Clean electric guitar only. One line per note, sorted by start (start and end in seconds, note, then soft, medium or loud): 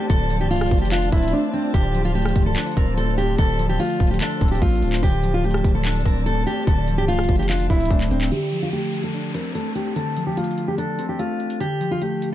0.00 0.50 A3 medium
0.00 0.51 C4 medium
0.00 0.30 D4 loud
0.10 1.13 D3 loud
0.30 1.33 F3 medium
0.51 1.32 A3 medium
0.92 1.74 D4 loud
1.12 1.74 C4 medium
1.33 1.74 A3 medium
1.74 2.77 D3 medium
1.95 2.97 F3 medium
2.15 2.96 A3 medium
2.56 3.59 D4 loud
2.77 3.79 C4 medium
2.97 3.79 A3 medium
3.39 4.41 D3 medium
3.59 4.62 F3 medium
3.80 4.60 A3 medium
4.20 5.03 D4 loud
4.41 5.03 C4 medium
4.62 5.03 A3 medium
5.03 6.06 D3 loud
5.23 6.26 F3 medium
5.44 6.25 A3 medium
5.85 6.88 D4 loud
6.06 7.08 C4 medium
6.26 7.07 A3 medium
6.68 7.70 D3 medium
6.88 7.90 F3 medium
7.09 7.89 A3 medium
7.50 8.32 D4 loud
7.70 8.32 C4 medium
7.91 8.32 A3 medium
8.32 9.34 D3 medium
8.52 9.55 F3 medium
8.73 9.53 A3 medium
9.14 10.17 D4 loud
9.34 10.37 C4 medium
9.55 10.36 A3 medium
9.96 10.99 D3 medium
10.17 11.19 F3 medium
10.37 11.18 A3 medium
10.78 11.60 D4 loud
10.99 11.60 C4 medium
11.19 11.60 A3 medium
11.60 12.35 D3 medium
11.81 12.35 F3 medium
12.02 12.35 A3 medium